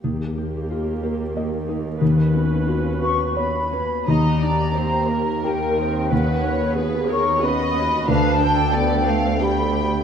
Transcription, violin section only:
4.07 D#5
4.42 D5
4.76 C5
5.09 A#4
6.10 B4
6.43 C#5
6.76 B4
7.08 C#5
7.41 D#5
8.09 F5
8.41 G5
8.73 D5
9.06 F5
9.40 G5

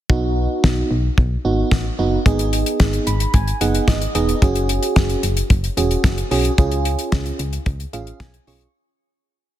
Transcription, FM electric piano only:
0.10 B3 D#4 F#4
1.45 B3 D#4 F#4
1.99 B3 D#4 F#4
2.26 B3 D#4 G#4
3.07 B5
3.34 G#5
3.61 B3 D#4 G#4 F#5
3.88 D#5
4.15 B3 D#4 G#4 D#5
4.42 C#4 F#4 G#4
5.77 C#4 F#4 G#4
6.31 C#4 F#4 G#4
6.58 C#4 F4 G#4
7.93 C#4 F4 G#4 F5
8.20 G#5
8.47 C#4 F4 G#4 C#6

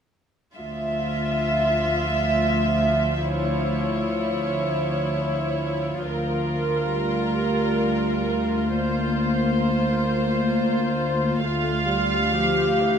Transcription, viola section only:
0.56 F3 F4
3.33 E4
6.06 F4
6.94 G3
8.75 A#3
11.44 A3 F4
11.89 G3
12.34 F3 G4
12.79 E3

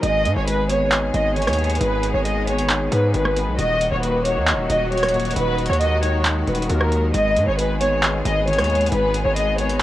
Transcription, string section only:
0.03 D#3 G#3 B3 G#4
3.59 F#3 A#3 F#4
5.36 G#3
7.14 B3 G#4

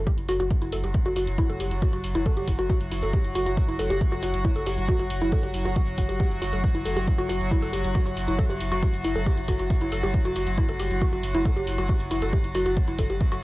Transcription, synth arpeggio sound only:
0.07 G4
0.29 F#4
0.40 F#4
0.62 E4
0.73 A4
0.84 G4
1.06 F#4
1.17 F#4
1.38 E4
1.50 A4
1.60 G4
1.82 F#4
1.93 F#4
2.15 E4
2.26 A4
2.37 G4
2.59 F#4
2.70 F#4
2.92 E4
3.03 A4
3.14 G4
3.35 F#4
3.46 F#4
3.68 E4
3.79 A4
3.90 G4
4.12 F#4
4.23 F#4
4.45 E4
4.56 A4
4.67 G4
4.89 F#4
5.00 F#4
5.22 E4
5.32 A4
5.43 G4
5.65 F#4
5.76 F#4
5.98 F#5
6.09 G4
6.20 G4
6.42 F#4
6.53 A4
6.75 E4
6.85 A4
6.97 G4
7.18 F#4
7.29 F#4
7.51 E4
7.62 A4
7.73 G4
7.95 F#4
8.06 F#4
8.28 E4
8.39 A4
8.50 G4
8.72 F#4
8.82 F#4
9.04 E4
9.15 A4
9.26 G4
9.48 F#4
9.60 F#4
9.81 E4
9.92 A4
10.03 G4
10.25 F#4
10.36 F#4
10.58 E4
10.69 A4
10.80 G4
11.02 F#4
11.13 F#4
11.35 E4
11.45 A4
11.56 G4
11.78 F#4
11.89 F#4
12.11 E4
12.22 A4
12.33 G4
12.55 F#4
12.66 F#4
12.88 E4
12.99 A4
13.10 G4
13.32 F#4

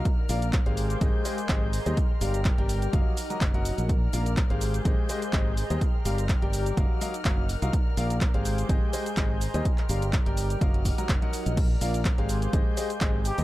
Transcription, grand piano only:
0.29 A#3 F4 A#4 D5 F5
0.66 G#3 G4 G#4 C5 F5
1.01 G#3 G4 G#4 C5 D#5
1.25 G#3 G4 G#4 C5 D#5
1.49 G#3 G4 G#4 C5 D#5
1.86 G3 G4 G#4 C5 D#5
2.21 G3 G4 A#4 D5 F5
2.58 G3 G4 A#4 D5 G5
2.93 F#3 F#4 A#4 D#5 F5
3.30 F#3 F#4 A#4 D#5 A#5
3.54 F#3 F#4 A#4 D#5 F#5
4.13 A#3 F4 A#4 D5 F5
4.50 G#3 G4 G#4 C5 F5
4.85 G#3 G4 G#4 C5 D#5
5.09 G#3 G4 G#4 C5 D#5
5.33 G#3 G4 G#4 C5 D#5
5.70 G3 G4 G#4 C5 D#5
6.05 G3 G4 A#4 D5 F5
6.42 G3 G4 A#4 D5 G5
6.77 F#3 F#4 A#4 D#5 F5
7.01 F#3 F#4 A#4 D#5 F5
7.25 F#3 F#4 A#4 D#5 F5
7.62 F#4 A#4 D#5 F5
7.97 A#3 F4 A#4 D5 F5
8.34 G#3 G4 G#4 C5 F5
8.69 G#3 G4 G#4 C5 D#5
8.93 G#3 G4 G#4 C5 D#5
9.17 G#3 G4 G#4 C5 D#5
9.54 G3 G4 G#4 C5 D#5
9.89 G3 G4 A#4 D5 F5
10.26 G3 G4 A#4 D5 G5
10.61 F#3 F#4 A#4 D#5 F5
10.98 F#3 F#4 A#4 D#5 A#5
11.22 F#3 F#4 A#4 D#5 F#5
11.81 A#3 F4 A#4 D5 F5
12.18 G#3 G4 G#4 C5 F5
12.53 G#3 G4 G#4 C5 D#5
12.77 G#3 G4 G#4 C5 D#5
13.01 G#3 G4 G#4 C5 D#5
13.38 G3 G4 G#4 C5 D#5

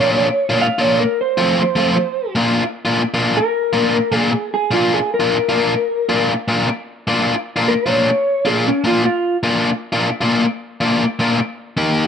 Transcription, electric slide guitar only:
Already playing: C#5
0.62 F5
0.81 C#5
1.00 A#4
1.21 C5
3.37 A#4
4.16 G#4
4.54 G#4
4.73 F4
4.94 G#4
5.14 A#4
7.68 A#4
7.88 C#5
8.47 G#4
8.67 C#4
8.87 F4
9.05 F4

